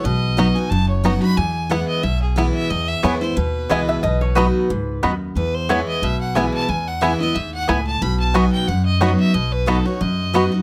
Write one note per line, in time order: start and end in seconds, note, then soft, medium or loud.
0.04 0.49 B1 medium
0.04 0.68 B2 medium
0.04 0.57 D#5 medium
0.37 0.55 F#3 medium
0.37 0.56 B3 medium
0.37 0.46 B3 medium
0.37 0.47 D#4 medium
0.37 0.56 D#4 medium
0.37 0.47 F#4 medium
0.37 0.55 F#4 medium
0.55 0.72 D#4 medium
0.55 0.71 F#4 medium
0.55 0.71 G#5 medium
0.70 1.16 F#1 medium
0.70 1.35 F#2 medium
0.70 0.88 A5 loud
0.89 1.05 C#5 soft
1.04 1.22 F#3 medium
1.04 1.22 B3 medium
1.04 1.13 B3 medium
1.04 1.22 D#4 medium
1.04 1.13 D#4 medium
1.04 1.13 F#4 medium
1.04 1.20 F#4 medium
1.04 1.21 F#5 medium
1.22 1.38 D#4 soft
1.22 1.37 F#4 medium
1.22 1.38 B5 loud
1.37 1.82 E2 medium
1.37 2.01 E2 medium
1.37 1.72 G#5 medium
1.70 2.02 E3 medium
1.70 2.02 G#3 medium
1.70 1.79 B3 medium
1.70 2.03 B3 medium
1.70 1.73 E4 medium
1.70 2.03 E4 medium
1.70 1.87 F#5 medium
1.88 2.04 D#5 medium
2.03 2.48 B1 medium
2.03 2.67 B2 medium
2.03 2.21 E5 medium
2.22 2.38 G#4 medium
2.36 2.68 E3 medium
2.36 2.69 G#3 medium
2.36 2.46 B3 medium
2.36 2.69 B3 medium
2.36 2.40 E4 medium
2.36 2.70 E4 medium
2.36 2.53 B4 medium
2.54 2.71 E5 medium
2.70 2.93 E2 medium
2.70 3.34 E2 medium
2.70 2.90 D#5 medium
2.88 3.05 E5 loud
3.03 3.32 E2 medium
3.03 3.21 E3 medium
3.03 3.21 G#3 medium
3.03 3.13 B3 medium
3.03 3.12 B3 medium
3.03 3.22 B3 medium
3.03 3.13 E4 loud
3.03 3.06 E4 medium
3.03 3.20 E4 loud
3.03 3.14 B4 loud
3.03 3.20 C#5 medium
3.03 3.14 G#5 medium
3.21 3.37 B3 medium
3.21 3.36 E4 medium
3.21 3.38 C5 medium
3.36 3.65 D#2 medium
3.36 4.00 B2 loud
3.36 4.36 B4 medium
3.69 3.98 C#2 medium
3.69 4.01 E3 medium
3.69 4.02 G#3 medium
3.69 3.80 B3 medium
3.69 3.79 B3 medium
3.69 4.02 B3 medium
3.69 3.80 E4 medium
3.69 3.74 E4 medium
3.69 4.03 E4 medium
3.69 3.80 B4 medium
3.69 3.88 D#5 loud
3.69 3.80 G#5 medium
3.89 4.02 E5 loud
4.03 4.48 B1 medium
4.03 4.67 B2 medium
4.03 4.21 D#5 loud
4.21 4.37 C#5 medium
4.35 4.68 F#3 medium
4.35 4.46 B3 loud
4.35 4.68 B3 medium
4.35 4.45 B3 medium
4.35 4.69 D#4 medium
4.35 4.45 D#4 medium
4.35 4.46 F#4 medium
4.35 4.45 F#4 medium
4.35 4.69 F#4 loud
4.35 5.02 B4 medium
4.35 4.46 D#5 medium
4.35 4.46 B5 loud
4.70 4.98 C#2 medium
4.70 5.02 G#2 medium
5.03 5.31 D#2 medium
5.03 5.35 F#2 medium
5.03 5.13 B3 medium
5.03 5.11 B3 medium
5.03 5.11 D#4 medium
5.03 5.13 F#4 medium
5.03 5.11 F#4 medium
5.03 5.13 D#5 medium
5.03 5.13 B5 loud
5.35 5.80 E2 medium
5.35 6.00 E2 medium
5.35 5.56 B4 medium
5.54 5.71 C5 medium
5.69 6.01 E3 medium
5.69 6.01 G#3 medium
5.69 5.79 B3 loud
5.69 5.78 B3 medium
5.69 6.02 B3 medium
5.69 5.79 E4 medium
5.69 5.73 E4 medium
5.69 6.02 E4 medium
5.69 5.79 B4 loud
5.69 5.87 C#5 medium
5.69 5.80 G#5 loud
5.88 6.05 D#5 medium
6.02 6.47 B1 medium
6.02 6.66 B2 loud
6.02 6.20 E5 medium
6.21 6.37 F#5 medium
6.35 6.67 E3 medium
6.35 6.68 G#3 medium
6.35 6.45 B3 medium
6.35 6.44 B3 medium
6.35 6.68 B3 medium
6.35 6.45 E4 medium
6.35 6.39 E4 medium
6.35 6.68 E4 medium
6.35 6.46 B4 medium
6.35 6.53 G#5 medium
6.35 6.46 G#5 medium
6.54 6.70 A5 loud
6.69 7.32 E2 medium
6.69 7.13 E2 loud
6.69 6.89 G#5 loud
6.87 7.03 F#5 medium
7.01 7.19 E3 medium
7.01 7.20 G#3 medium
7.01 7.12 B3 loud
7.01 7.10 B3 medium
7.01 7.20 B3 medium
7.01 7.12 E4 medium
7.01 7.05 E4 medium
7.01 7.19 E4 medium
7.01 7.12 B4 medium
7.01 7.19 E5 medium
7.01 7.12 G#5 medium
7.20 7.36 B3 medium
7.20 7.35 E4 medium
7.20 7.36 D#5 loud
7.35 7.63 D#2 medium
7.35 7.67 G#2 medium
7.35 7.53 E5 medium
7.54 7.70 F#5 loud
7.68 7.97 C#2 medium
7.68 8.00 A2 medium
7.68 7.78 B3 medium
7.68 7.77 B3 medium
7.68 7.78 E4 medium
7.68 7.71 E4 medium
7.68 7.78 B4 loud
7.68 7.86 G#5 medium
7.68 7.78 G#5 loud
7.87 8.03 A5 loud
8.01 8.46 B1 medium
8.01 8.65 B2 medium
8.01 8.19 B5 loud
8.19 8.36 A5 medium
8.34 8.66 F#3 medium
8.34 8.44 B3 medium
8.34 8.43 B3 medium
8.34 8.67 B3 medium
8.34 8.43 D#4 medium
8.34 8.67 D#4 medium
8.34 8.45 F#4 loud
8.34 8.43 F#4 medium
8.34 8.67 F#4 medium
8.34 8.45 D#5 loud
8.34 8.51 G#5 medium
8.34 8.45 B5 loud
8.52 8.69 G5 medium
8.68 9.13 F#2 medium
8.68 9.32 F#2 loud
8.68 8.85 F#5 medium
8.85 9.02 D#5 loud
9.01 9.33 F#3 medium
9.01 9.11 B3 loud
9.01 9.09 B3 medium
9.01 9.33 B3 medium
9.01 9.10 D#4 medium
9.01 9.33 D#4 medium
9.01 9.11 F#4 medium
9.01 9.10 F#4 medium
9.01 9.34 F#4 medium
9.01 9.19 C#5 medium
9.01 9.11 D#5 medium
9.01 9.11 B5 medium
9.20 9.35 E5 loud
9.34 9.79 B1 medium
9.34 9.98 B2 medium
9.34 9.53 D#5 medium
9.52 9.70 B4 loud
9.66 9.85 F#3 medium
9.66 9.85 B3 medium
9.66 9.77 B3 medium
9.66 9.76 B3 medium
9.66 9.85 D#4 medium
9.66 9.76 D#4 medium
9.66 9.78 F#4 medium
9.66 9.76 F#4 medium
9.66 9.84 F#4 medium
9.66 9.87 A4 medium
9.66 9.78 D#5 loud
9.66 9.78 B5 medium
9.85 10.01 D#4 medium
9.85 10.00 F#4 medium
9.85 10.02 C#5 medium
10.01 10.62 F#2 medium
10.01 10.46 F#2 medium
10.01 10.52 D#5 medium
10.34 10.51 F#3 medium
10.34 10.44 B3 loud
10.34 10.52 B3 medium
10.34 10.43 B3 medium
10.34 10.52 D#4 medium
10.34 10.43 D#4 medium
10.34 10.44 F#4 medium
10.34 10.43 F#4 medium
10.34 10.51 F#4 medium
10.34 10.44 D#5 loud
10.34 10.45 B5 medium
10.52 10.62 D#4 soft
10.52 10.62 F#4 medium